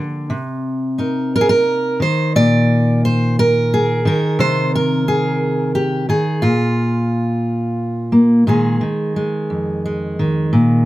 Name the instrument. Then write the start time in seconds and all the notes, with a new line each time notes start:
steel-string acoustic guitar
Already playing: D3 A#3 D4 G4
0.30 C3
0.98 D#4 A#4
1.36 A#4
1.41 G#4
1.49 A#4
2.00 D#3 C5
2.36 A#2 D5
3.05 C5
3.39 A#4
3.74 G#4
4.05 D#3 A#4
4.39 C3 C5
4.75 A#4
5.08 G#4
5.75 G4
6.09 D#3 G#4
6.42 A#2 F4
8.12 A#3
8.47 A#2 D#3 G#3 G#4
8.81 D#3
9.16 G#3
9.50 F2
9.86 G#3
10.19 D#3
10.53 A#2